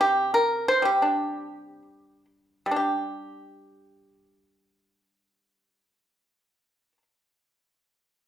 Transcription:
pipa
Already playing: C3
0.01 G4
0.34 A#4
0.68 C5
0.82 G3 G4
1.02 D4
2.66 G3
2.71 D4
2.76 G4

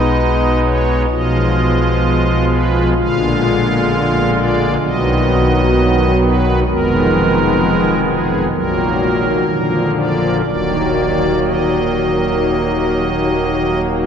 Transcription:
pipe organ
Already playing: B1 B2 G#3 B3 D#4 D#5
0.64 C#5
1.10 B1 B2 F3 G#3 F4 D#5
2.49 B4
2.97 A#1 A#2 D3 G#3 F4 F5
4.35 D5
4.81 B1 B2 D#3 F#3 B3 D#5
6.20 B4
6.67 F1 F2 D#3 G#3 B3 A#4
8.05 G#4
8.52 A#1 A#2 D#3 F#3 A#3 A#4
9.46 A#1 A#2 D3 F3 A#3
9.95 D5
10.44 D#1 D#2 D#3 F#3 A#3 D5
11.43 D#5

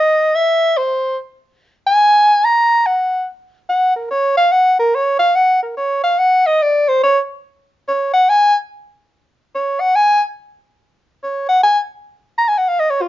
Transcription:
soprano saxophone
Already playing: D#5
0.35 E5
0.77 C5
1.87 G#5
2.45 A#5
2.86 F#5
3.69 F#5
3.96 A#4
4.11 C#5
4.37 F5
4.52 F#5
4.79 A#4
4.95 C#5
5.19 F5
5.35 F#5
5.63 A#4
5.77 C#5
6.03 F5
6.19 F#5
6.47 D#5
6.62 D5
6.88 C5
7.03 C#5
7.88 C#5
8.13 F#5
8.29 G#5
9.55 C#5
9.80 F#5
9.96 G#5
11.24 C#5
11.49 F#5
11.63 G#5
12.38 A#5
12.48 G#5
12.58 F#5
12.68 F5
12.80 D#5
12.90 C#5
13.02 F4

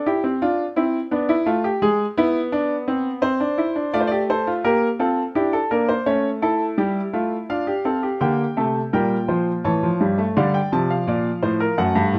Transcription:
grand piano
0.06 E4 G4
0.24 C4
0.42 D4 F4
0.76 C4 E4
1.11 B3 D4
1.29 E4
1.46 A3 F4
1.64 G4
1.82 G#3 G#4
2.17 B3 E4
2.52 D4
2.88 C4
3.22 C4 C5
3.40 D4
3.58 E4
3.76 D4
3.94 A3 F4 D5
4.01 C5
4.07 D5
4.11 G4
4.30 A4 C5
4.47 F4
4.64 A#3 G4 A#4
4.99 C4 F4 A4
5.35 D4 E4 G4
5.53 A4
5.71 A#3 D4 A#4
5.89 C5
6.06 A3 C#4 C#5
6.42 E4 A4
6.78 G3 G4
7.13 A3 F4
7.50 D4 F4 F5
7.67 G4
7.85 C4 A4
8.03 G4
8.20 D3 A#3 G4 G5
8.57 C3 A3 A4
8.93 A#2 G3 A#4 G5
9.28 F3 C5
9.64 A2 E3 C#5 A5
9.83 F3
10.00 G2 G3
10.18 A3
10.37 D3 G3 D5 F5
10.54 G5
10.72 C3 F3 A5
10.90 F5
11.07 A#2 D5
11.43 A2 C5
11.60 A#4
11.78 F#2 A3 A4 F#5
11.95 G2
12.14 A2

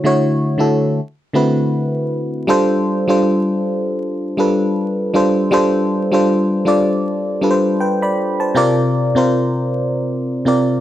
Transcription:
fm electric piano
Already playing: D3 A3 E4 F#4 C#5
0.04 D3 A3 E4 F#4 C#5
0.58 D3 A3 E4 F#4 A4
1.33 D3 A3 C4 E4 F#4 B4
2.47 G3 D4 F4 A4 C5
3.08 G3 D4 F4 A4 C5
4.37 G3 D4 F4 A4 B4
5.14 G3 D4 F4 A4 C5
5.51 G3 D4 F4 A4 C5
6.11 G3 D4 F4 A4 C5
6.65 G3 D4 F4 A4 D5
7.41 G3 D4 F4 A4 B4
7.51 C5
7.80 B4 G5
8.02 D5 B5
8.40 C5 A5
8.55 C3 C4 F4 A#4 D5
9.15 C3 C4 F4 A#4 C5
10.45 C3 C4 F4 A#4 D5

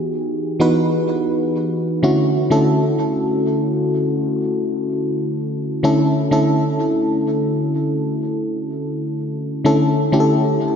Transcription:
fm electric piano
Already playing: E3 B3 D#4 F#4 G4 G#4
0.60 E3 B3 D#4 F#4 B4
2.03 D3 A3 C#4 E4 F#4
2.50 D3 A3 C#4 E4 A4
5.83 D3 A3 C#4 E4 A4
6.31 D3 A3 C#4 E4 A4
9.64 D3 A3 C#4 E4 A4
10.12 D3 A3 C#4 E4 G4
10.20 A4

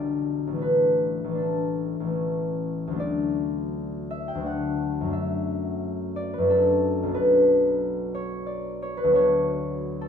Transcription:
harp
Already playing: B1 D3 G3 D4 D5 E5
0.47 A1 E3
0.54 A3 D4
0.62 B4
1.24 A1
1.28 E3 A3 B4
1.35 D4 A4
2.00 A1 E3
2.07 A3
2.11 C#4
2.87 D2 F#3
2.93 A3 D4
3.00 D5
4.11 E5
4.28 G5
4.35 D2 F#3
4.40 A3 D4
4.46 F#5
5.01 F#2 F#3
5.07 A3 D4
5.13 E5
6.16 D5
6.33 B4
6.38 F#2 F#3
6.44 A3 D4
6.50 A4
7.03 B1 F#3
7.09 B3 D4
7.15 B4
8.15 C#5
8.46 D5
8.82 C#5
8.97 B4
9.04 D2 F#3
9.10 B3 D4
9.15 C#5
10.01 A4

